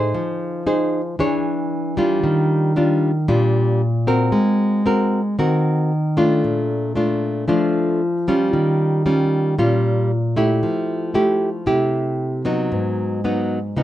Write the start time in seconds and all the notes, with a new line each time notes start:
Already playing: A2 D#4 G#4 C5
0.14 F3
0.67 D#4 G#4 C5
1.19 E3 D4 G#4 C#5
1.97 G3 D4 F4
2.24 D#3
2.76 G3 D4 F4
3.28 A#2 G3 D4 F4
4.07 C4 F#4 A#4
4.32 G#3
4.86 C4 F#4 A#4
5.39 D#3 C4 F#4 A#4
6.17 A3 D4 F4
6.44 A#2
6.95 A3 D4 F4
7.48 F3 A3 D4 F4
8.28 G3 C#4 F4
8.53 D#3
9.06 G3 C#4 F4
9.59 A#2 G3 C#4 F4
10.36 A3 E4 G4
10.63 F3
11.14 A3 E4 G4
11.66 C3 A3 E4 G4
12.45 F#3 B3 D#4
12.72 G#2
13.24 F#3 B3 D#4
13.76 C#3 F3 B3 D#4